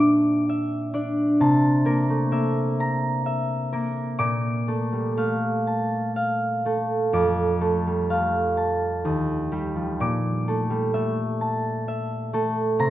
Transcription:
0.00 1.44 A#2 medium
0.00 0.92 D4 medium
0.00 0.93 D5 medium
0.00 0.48 E5 medium
0.00 0.60 F5 medium
0.00 1.39 A5 medium
0.00 3.90 D6 medium
0.49 2.31 E5 medium
0.94 4.84 D4 medium
0.94 4.84 D5 medium
1.40 4.24 C3 medium
1.40 5.31 A5 medium
1.85 2.30 A#3 medium
1.85 3.71 A#4 medium
2.10 2.48 A3 soft
2.31 3.72 A#3 medium
2.31 3.25 E5 medium
2.80 6.70 A#5 medium
3.26 4.24 E5 medium
3.72 7.18 A#3 medium
3.72 7.18 A#4 medium
4.19 7.18 A#2 medium
4.19 7.12 D6 medium
4.68 5.16 A3 medium
4.68 6.65 A4 soft
4.92 5.34 G3 soft
5.17 6.64 A3 medium
5.17 6.15 F5 medium
5.67 8.56 A5 medium
6.16 8.09 F5 soft
6.65 7.59 A3 soft
6.65 7.60 A4 medium
7.13 9.08 F2 medium
7.13 9.07 D6 medium
7.60 8.09 A3 soft
7.60 9.08 A4 soft
7.87 8.26 G3 soft
8.10 9.08 A3 soft
8.10 12.00 F5 medium
8.57 9.08 A5 medium
9.05 10.02 D#2 medium
9.05 10.03 D#6 medium
9.52 10.02 G3 soft
9.52 10.02 G4 medium
9.75 10.15 F3 soft
10.00 12.83 A#2 medium
10.00 12.83 D6 medium
10.48 10.93 A3 soft
10.48 12.32 A4 medium
10.70 11.10 G3 soft
10.94 12.32 A3 medium
10.94 11.87 E5 medium
11.41 12.82 A5 medium
11.88 12.90 E5 medium
12.33 12.82 A3 medium
12.33 12.82 A4 medium
12.79 12.90 C3 medium
12.79 12.90 A#5 medium

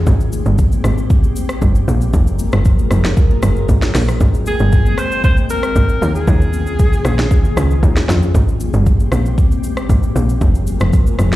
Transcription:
0.07 0.43 G#1 loud
0.07 2.12 G#3 medium
0.07 2.12 C4 medium
0.07 2.12 G4 medium
0.07 kick loud
0.07 low conga medium
0.07 shaker medium
0.20 shaker medium
0.32 high conga medium
0.32 shaker loud
0.46 0.81 G1 medium
0.46 shaker medium
0.58 kick loud
0.58 low conga medium
0.58 shaker medium
0.72 high conga medium
0.72 shaker medium
0.84 1.32 G#1 medium
0.84 cross-stick medium
0.84 shaker medium
0.98 shaker medium
1.10 kick loud
1.10 shaker medium
1.24 high conga medium
1.24 shaker soft
1.36 high conga medium
1.36 shaker loud
1.49 cross-stick medium
1.49 shaker soft
1.62 1.85 G1 loud
1.62 kick loud
1.62 high conga medium
1.62 low conga medium
1.62 shaker medium
1.75 shaker medium
1.88 2.11 A#1 medium
1.88 high conga medium
1.88 low conga medium
1.88 shaker loud
2.01 shaker medium
2.13 2.49 F#1 loud
2.13 4.19 F#3 medium
2.13 4.19 F4 medium
2.13 4.19 G#4 medium
2.13 4.19 A#4 medium
2.13 kick loud
2.13 low conga medium
2.13 shaker medium
2.27 shaker medium
2.39 high conga medium
2.39 shaker loud
2.52 2.88 F#1 medium
2.52 cross-stick loud
2.52 shaker medium
2.65 kick loud
2.65 low conga medium
2.65 shaker medium
2.79 high conga medium
2.79 shaker medium
2.91 3.39 F1 loud
2.91 cross-stick medium
2.91 shaker medium
3.04 snare medium
3.04 shaker medium
3.17 kick loud
3.17 shaker medium
3.30 high conga medium
3.30 shaker soft
3.43 3.67 F#1 medium
3.43 cross-stick loud
3.43 high conga medium
3.43 shaker loud
3.56 shaker soft
3.69 3.92 G#1 loud
3.69 kick loud
3.69 high conga medium
3.69 low conga medium
3.69 shaker medium
3.82 snare medium
3.82 shaker medium
3.95 4.18 A#1 medium
3.95 snare medium
3.95 open hi-hat medium
3.95 high conga medium
3.95 low conga medium
3.95 shaker medium
4.08 cross-stick medium
4.08 shaker medium
4.20 4.56 G#1 loud
4.20 6.00 G#3 medium
4.20 6.00 C4 medium
4.20 6.00 G5 medium
4.20 kick loud
4.20 low conga medium
4.20 shaker medium
4.34 shaker medium
4.46 5.00 G#4 loud
4.46 high conga medium
4.46 shaker loud
4.59 5.00 G1 medium
4.59 shaker medium
4.72 kick loud
4.72 low conga medium
4.72 shaker medium
4.86 high conga medium
4.86 shaker medium
4.98 5.46 A#1 medium
4.98 5.24 C5 loud
4.98 cross-stick medium
4.98 shaker medium
5.12 shaker soft
5.24 5.36 C5 loud
5.24 kick loud
5.24 shaker medium
5.37 high conga medium
5.37 shaker soft
5.50 6.11 A#4 loud
5.50 high conga medium
5.50 shaker loud
5.63 cross-stick medium
5.63 shaker soft
5.76 5.99 G#1 medium
5.76 kick loud
5.76 high conga medium
5.76 low conga medium
5.76 shaker medium
5.89 shaker medium
6.01 6.25 D#2 loud
6.01 8.32 D#3 medium
6.01 8.32 C#4 medium
6.01 8.32 F4 medium
6.01 8.32 G#4 medium
6.01 high conga medium
6.01 low conga medium
6.01 shaker loud
6.15 8.05 G#4 medium
6.15 shaker medium
6.27 6.68 D#2 loud
6.27 kick loud
6.27 low conga medium
6.27 shaker medium
6.41 shaker medium
6.53 high conga medium
6.53 shaker loud
6.67 7.02 C2 medium
6.67 shaker medium
6.79 kick loud
6.79 low conga medium
6.79 shaker medium
6.93 high conga medium
6.93 shaker medium
7.05 7.53 A#1 loud
7.05 cross-stick medium
7.05 shaker medium
7.19 snare medium
7.19 shaker medium
7.31 kick loud
7.31 shaker medium
7.45 high conga medium
7.45 shaker soft
7.57 7.80 C#2 loud
7.57 cross-stick loud
7.57 high conga medium
7.57 shaker loud
7.71 shaker soft
7.83 8.06 D#2 medium
7.83 kick medium
7.83 high conga medium
7.83 low conga medium
7.83 shaker medium
7.97 snare medium
7.97 shaker medium
8.09 8.32 F2 medium
8.09 snare medium
8.09 high conga medium
8.09 low conga medium
8.09 shaker medium
8.22 shaker medium
8.35 8.70 G#1 loud
8.35 10.39 G#3 medium
8.35 10.39 C4 medium
8.35 10.39 G4 medium
8.35 kick loud
8.35 low conga medium
8.35 shaker medium
8.48 shaker medium
8.60 high conga medium
8.60 shaker loud
8.74 9.09 G1 loud
8.74 shaker medium
8.86 kick loud
8.86 low conga medium
8.86 shaker medium
9.00 high conga medium
9.00 shaker medium
9.12 9.60 A#1 medium
9.12 cross-stick medium
9.12 shaker medium
9.26 shaker soft
9.38 kick loud
9.38 shaker medium
9.51 high conga medium
9.51 shaker soft
9.64 high conga medium
9.64 shaker loud
9.77 cross-stick medium
9.77 shaker soft
9.89 10.13 G#1 medium
9.89 kick loud
9.89 high conga medium
9.89 low conga medium
9.89 shaker medium
10.03 shaker medium
10.16 10.39 A#1 loud
10.16 high conga medium
10.16 low conga medium
10.16 shaker loud
10.29 shaker medium
10.41 10.77 F#1 loud
10.41 11.36 F#3 medium
10.41 11.36 F4 medium
10.41 11.36 G#4 medium
10.41 11.36 A#4 medium
10.41 kick loud
10.41 low conga medium
10.41 shaker medium
10.55 shaker medium
10.67 high conga medium
10.67 shaker loud
10.80 11.15 F1 medium
10.80 cross-stick loud
10.80 shaker medium
10.93 kick loud
10.93 low conga medium
10.93 shaker medium
11.07 high conga medium
11.07 shaker medium
11.19 11.36 F1 medium
11.19 cross-stick medium
11.19 shaker medium
11.32 snare medium
11.32 shaker medium

